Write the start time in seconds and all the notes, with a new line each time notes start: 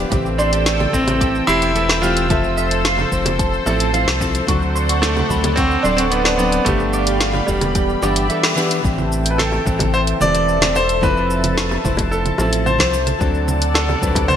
0.10 A1 E3 A3 C4 G4 A4 C5 G5 E6, kick, closed hi-hat, low conga, shaker
0.26 shaker
0.38 D4 C5, shaker
0.52 G4, closed hi-hat, shaker
0.66 E5, snare, closed hi-hat, shaker
0.80 high bongo, low conga, shaker
0.92 A1 E3 A3 C4 A4, kick, shaker
1.07 closed hi-hat, high bongo, low conga, shaker
1.21 G4, kick, closed hi-hat, shaker
1.35 shaker
1.47 E1 E3 A3 C4 E4 G4 C5, shaker
1.62 G4, closed hi-hat, shaker
1.74 E3 A3 C4 A4 E5, closed hi-hat, shaker
1.89 snare, shaker
2.02 E3 A3 C4 F4 G4, shaker
2.17 closed hi-hat, shaker
2.29 F1 F3 C4 A4 E5, kick, closed hi-hat, low conga, shaker
2.44 shaker
2.58 E5, shaker
2.71 A4, closed hi-hat, shaker
2.85 F5, snare, closed hi-hat, shaker
2.98 high bongo, low conga, shaker
3.11 F1 F3 C4 C5, kick, shaker
3.25 closed hi-hat, high bongo, low conga, shaker
3.39 A4, kick, closed hi-hat, shaker
3.53 shaker
3.66 A1 F3 C4 E4 A4 E5, high bongo, shaker
3.80 A4, closed hi-hat, shaker
3.93 F3 C4 E4 C5 F5, closed hi-hat, shaker
4.07 C2, snare, shaker
4.20 F3 C4 E4 A4, kick, shaker
4.35 closed hi-hat, shaker
4.47 D2 F#3 C4 D4 F#4 A4 D5 F#5, kick, closed hi-hat, low conga, shaker
4.62 shaker
4.75 C5, shaker
4.89 F#4, closed hi-hat, shaker
5.02 A3 D5, snare, closed hi-hat, shaker
5.17 high bongo, low conga, shaker
5.29 D2 F#3 C4 D4 B5, kick, shaker
5.44 closed hi-hat, high bongo, low conga, shaker
5.56 C4 F#4, kick, closed hi-hat, shaker
5.71 shaker
5.83 D1 F#3 C4 D4 A4 C5, shaker
5.97 C4 F#4, closed hi-hat, shaker
6.10 F#3 B3 C4 D4 B4 D5, closed hi-hat, shaker
6.25 snare, shaker
6.37 F#3 B3 C4 D4 A4, shaker
6.52 closed hi-hat, shaker
6.65 G1 F3 A3 B3 D4 G4 F5 B5, kick, closed hi-hat, low conga, shaker
6.80 shaker
6.93 D5, shaker
7.07 G4, closed hi-hat, shaker
7.21 F5, snare, closed hi-hat, shaker
7.33 high bongo, low conga, shaker
7.47 E1 E3 G3 B3 D4 A4, kick, shaker
7.61 closed hi-hat, high bongo, low conga, shaker
7.75 G4 D5 E5, kick, closed hi-hat, shaker
7.89 shaker
8.02 G1 E3 B3 D4 G4 D5, high bongo, shaker
8.16 G4, closed hi-hat, shaker
8.29 E3 B3 D4 A4 E5, closed hi-hat, shaker
8.43 snare, shaker
8.56 E3 B3 D4 G4, shaker
8.71 closed hi-hat, shaker
8.83 A1 E3 A3 C4 G4 A4 E5 G5 A5, kick, shaker
8.98 low conga, shaker
9.12 shaker
9.26 closed hi-hat, shaker
9.31 B4
9.38 A4, snare, low conga, shaker
9.52 high bongo, shaker
9.65 A1 E3 A3 C4 A4, kick, shaker
9.79 kick, closed hi-hat, high bongo, low conga, shaker
9.94 C5, shaker
10.07 closed hi-hat, shaker
10.20 E1 E3 A3 C4 G4 D5, low conga, shaker
10.35 closed hi-hat, shaker
10.49 shaker
10.61 E3 A3 C4 A4, snare, closed hi-hat, low conga, shaker
10.76 C5, shaker
10.89 closed hi-hat, shaker
11.01 F1 F3 C4 E4 A4 B4, kick, low conga, shaker
11.17 shaker
11.30 shaker
11.44 closed hi-hat, low conga, shaker
11.58 snare, shaker
11.71 high bongo, shaker
11.84 F1 F3 C4 E4 C5, kick, low conga, shaker
11.97 kick, closed hi-hat, high bongo, shaker
12.11 A4, shaker
12.26 closed hi-hat, low conga, shaker
12.38 A1 F3 C4 E4 A4, high bongo, shaker
12.53 closed hi-hat, shaker
12.66 C5, low conga, shaker
12.79 C2 F3 C4 E4 C5, kick, snare, closed hi-hat, shaker
12.94 shaker
13.07 closed hi-hat, low conga, shaker
13.19 D2 F#3 C4 D4 A4 D5 F#5, kick, shaker
13.34 shaker
13.48 low conga, shaker
13.62 closed hi-hat, shaker
13.74 A4, snare, shaker
13.89 high bongo, low conga, shaker
14.01 D2 F#3 C4 D4 B4, kick, shaker
14.15 kick, closed hi-hat, high bongo, shaker
14.28 C5, low conga, shaker